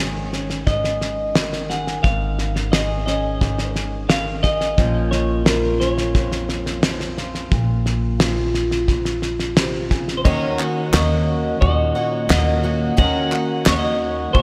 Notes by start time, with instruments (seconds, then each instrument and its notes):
Already playing: upright bass G#1, steel-string acoustic guitar G#2 G#3 C#4, clean electric guitar C#5
0.00 steel-string acoustic guitar D#3 G#4
0.33 steel-string acoustic guitar C#4, snare
0.50 snare
0.67 steel-string acoustic guitar G#2, clean electric guitar D#5, kick, snare
0.84 snare
1.01 snare
1.35 steel-string acoustic guitar D#3, snare
1.53 snare
1.70 steel-string acoustic guitar G#4, clean electric guitar F#5, snare
1.87 snare
2.03 upright bass G#1, steel-string acoustic guitar G#2, clean electric guitar F5, kick, snare
2.39 snare
2.56 snare
2.72 steel-string acoustic guitar D#3 G#4, clean electric guitar D#5, snare
3.06 steel-string acoustic guitar C#4, clean electric guitar D#5, snare
3.41 steel-string acoustic guitar G#2, kick, snare
3.58 snare
3.76 snare
4.09 steel-string acoustic guitar D#3, clean electric guitar F5, snare
4.43 steel-string acoustic guitar G#4, clean electric guitar D#5, kick, snare
4.61 snare
4.77 upright bass A#1, steel-string acoustic guitar A#2 F3 A#3 C#4 F4, kick, snare
5.11 clean electric guitar C#5, snare
5.46 steel-string acoustic guitar F3 F4, clean electric guitar A#4, snare
5.80 steel-string acoustic guitar C#4, clean electric guitar C#5, snare
5.98 snare
6.15 steel-string acoustic guitar F2, kick, snare
6.32 snare
6.49 snare
6.66 snare
6.83 steel-string acoustic guitar F3, snare
7.00 snare
7.18 steel-string acoustic guitar F4, snare
7.35 snare
7.52 upright bass A#1, steel-string acoustic guitar A#2, kick, snare
7.86 snare
8.20 steel-string acoustic guitar F3 F4, snare
8.54 snare
8.71 snare
8.88 steel-string acoustic guitar F2, kick, snare
9.05 snare
9.22 snare
9.40 snare
9.56 steel-string acoustic guitar C3, snare
9.91 steel-string acoustic guitar C#3, kick, snare
10.08 snare
10.17 clean electric guitar C5
10.24 upright bass D#2, steel-string acoustic guitar D#3 C#4, twelve-string acoustic guitar D#3 F#3 A#3 C#4 F#4, tonewheel organ D#3 A#3 C#4 F#5, clean electric guitar C#5, upright piano D#5, kick
10.59 twelve-string acoustic guitar A#3 C#4 F#4, upright piano F#5, clap
10.93 upright bass D#2, twelve-string acoustic guitar F#3 A#3 C#4 F#4, steel-string acoustic guitar A#3, clean electric guitar D#5, upright piano C#6, snare, clap
11.61 upright bass D#2, steel-string acoustic guitar A#2 F#4, clean electric guitar D#5, upright piano C#6, kick
11.95 twelve-string acoustic guitar A#3 C#4 F#4, upright piano F#5
12.29 upright bass D#2, twelve-string acoustic guitar F#3 A#3 C#4 F#4, steel-string acoustic guitar A#3, upright piano D#5, clean electric guitar D#5, snare, clap
12.63 twelve-string acoustic guitar A#3 C#4 F#4, steel-string acoustic guitar F#4, upright piano F#5
12.97 upright bass D#2, twelve-string acoustic guitar D#3 F#3 A#3 C#4 F#4, steel-string acoustic guitar D#3 C#4, upright piano D#5, clean electric guitar F#5, kick
13.31 twelve-string acoustic guitar A#3 C#4 F#4, upright piano F#5, clap
13.66 upright bass D#2, twelve-string acoustic guitar F#3 A#3 C#4 F#4, steel-string acoustic guitar A#3, clean electric guitar D#5, upright piano C#6, snare, clap
13.72 clean electric guitar C#5
13.79 clean electric guitar D#5
14.33 upright bass D#2, steel-string acoustic guitar A#2 F#4, clean electric guitar C#5, upright piano C#6, kick